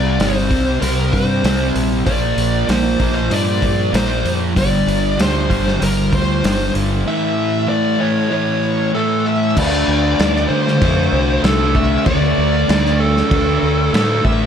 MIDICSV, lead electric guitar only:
0, 0, Header, 1, 2, 480
1, 0, Start_track
1, 0, Key_signature, -1, "minor"
1, 0, Tempo, 625000
1, 1583, Time_signature, 4, 2, 24, 8
1, 11106, End_track
2, 0, Start_track
2, 0, Title_t, "Lead electric guitar"
2, 0, Program_c, 0, 29
2, 0, Note_on_c, 0, 74, 91
2, 164, Note_off_c, 0, 74, 0
2, 167, Note_on_c, 0, 72, 81
2, 627, Note_on_c, 0, 70, 77
2, 650, Note_off_c, 0, 72, 0
2, 864, Note_on_c, 0, 72, 78
2, 873, Note_off_c, 0, 70, 0
2, 1313, Note_off_c, 0, 72, 0
2, 1588, Note_on_c, 0, 74, 98
2, 2068, Note_off_c, 0, 74, 0
2, 2071, Note_on_c, 0, 72, 85
2, 2408, Note_off_c, 0, 72, 0
2, 2417, Note_on_c, 0, 72, 77
2, 2553, Note_off_c, 0, 72, 0
2, 2553, Note_on_c, 0, 74, 93
2, 3032, Note_off_c, 0, 74, 0
2, 3035, Note_on_c, 0, 72, 81
2, 3363, Note_off_c, 0, 72, 0
2, 3518, Note_on_c, 0, 74, 93
2, 4004, Note_off_c, 0, 74, 0
2, 4005, Note_on_c, 0, 72, 79
2, 4477, Note_off_c, 0, 72, 0
2, 4480, Note_on_c, 0, 70, 76
2, 4718, Note_off_c, 0, 70, 0
2, 4722, Note_on_c, 0, 72, 83
2, 5162, Note_off_c, 0, 72, 0
2, 5435, Note_on_c, 0, 76, 100
2, 5905, Note_off_c, 0, 76, 0
2, 5908, Note_on_c, 0, 74, 84
2, 6149, Note_off_c, 0, 74, 0
2, 6152, Note_on_c, 0, 73, 84
2, 6385, Note_off_c, 0, 73, 0
2, 6395, Note_on_c, 0, 73, 74
2, 6840, Note_off_c, 0, 73, 0
2, 6871, Note_on_c, 0, 69, 71
2, 7112, Note_on_c, 0, 76, 77
2, 7115, Note_off_c, 0, 69, 0
2, 7356, Note_off_c, 0, 76, 0
2, 7359, Note_on_c, 0, 74, 87
2, 8053, Note_on_c, 0, 72, 91
2, 8094, Note_off_c, 0, 74, 0
2, 8780, Note_off_c, 0, 72, 0
2, 8783, Note_on_c, 0, 69, 79
2, 9029, Note_on_c, 0, 76, 89
2, 9031, Note_off_c, 0, 69, 0
2, 9261, Note_off_c, 0, 76, 0
2, 9264, Note_on_c, 0, 74, 99
2, 9985, Note_on_c, 0, 69, 93
2, 10005, Note_off_c, 0, 74, 0
2, 10701, Note_off_c, 0, 69, 0
2, 10710, Note_on_c, 0, 69, 89
2, 10929, Note_off_c, 0, 69, 0
2, 10940, Note_on_c, 0, 76, 93
2, 11106, Note_off_c, 0, 76, 0
2, 11106, End_track
0, 0, End_of_file